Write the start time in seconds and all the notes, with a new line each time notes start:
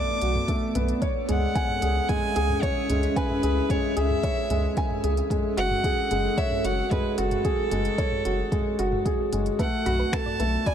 Already playing: A3 B3 F#4 A4 D5 D6
0.21 B1 F#4, closed hi-hat
0.35 mid tom
0.48 A3, kick, closed hi-hat
0.75 B1 B3, closed hi-hat, mid tom
0.88 closed hi-hat
1.02 C#4 C#5 E5, kick, closed hi-hat
1.28 C#2 G#3 F#5, closed hi-hat, mid tom
1.55 G#5, kick, closed hi-hat
1.69 mid tom
1.82 C#2 G#4, closed hi-hat
2.09 G#3 G#5, kick, closed hi-hat, mid tom
2.36 C#2 G#4, closed hi-hat
2.49 mid tom
2.62 C#5, kick, closed hi-hat
2.89 C#2 G#3, closed hi-hat, mid tom
3.03 closed hi-hat
3.16 B4 G#5, kick, closed hi-hat
3.30 mid tom
3.43 C#2 G#4, closed hi-hat
3.70 G#3 C#5, kick, closed hi-hat, mid tom
3.97 C#2 G#4 E5, closed hi-hat
4.10 mid tom
4.23 C#5, kick, closed hi-hat
4.50 C#2 G#3, closed hi-hat, mid tom
4.77 G#5, kick, closed hi-hat
4.90 mid tom
5.04 C#2 G#4, closed hi-hat
5.17 closed hi-hat
5.30 G#3 F#4, kick, closed hi-hat, mid tom
5.57 F#1 F#4 F#5, closed hi-hat
5.71 mid tom
5.84 G#4, kick, closed hi-hat
6.11 F#1 G#3, closed hi-hat, mid tom
6.37 C#5 E5, kick, closed hi-hat
6.51 mid tom
6.64 F#1 F#4 F#5, closed hi-hat
6.91 G#3 B4, kick, closed hi-hat, mid tom
7.18 F#1 F#4 A4, closed hi-hat
7.31 closed hi-hat, mid tom
7.45 G#4, kick, closed hi-hat
7.71 F#1 G#3, closed hi-hat, mid tom
7.85 closed hi-hat
7.98 C#5, kick, closed hi-hat
8.12 mid tom
8.25 F#1 F#4, closed hi-hat
8.52 G#3, kick, closed hi-hat, mid tom
8.79 F#1 F#4, closed hi-hat
8.92 mid tom
9.05 G#4, kick, closed hi-hat
9.32 F#1 G#3, closed hi-hat, mid tom
9.46 closed hi-hat
9.59 A3 B3 A4 B4 D5 F#5, kick, closed hi-hat
9.86 B1 F#4 B5, closed hi-hat, mid tom
9.99 B4
10.13 A4 B4 A5, finger snap, kick, closed hi-hat
10.26 D5, mid tom
10.39 B1 A3 B4, closed hi-hat
10.66 D5 G#5 B5, kick, closed hi-hat, mid tom